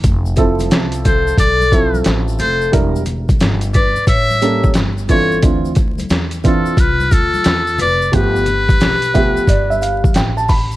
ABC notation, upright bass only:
X:1
M:4/4
L:1/16
Q:"Swing 16ths" 1/4=89
K:Ddor
V:1 name="Upright bass" clef=bass
F,,,4 C,,4 B,,,4 A,,,2 F,,,2 | E,,,4 G,,,3 z A,,,4 G,,,4 | D,,4 E,,3 z C,,2 D,,2 E,,2 F,,,2 | G,,,4 B,,,3 z G,,,4 A,,,4 |]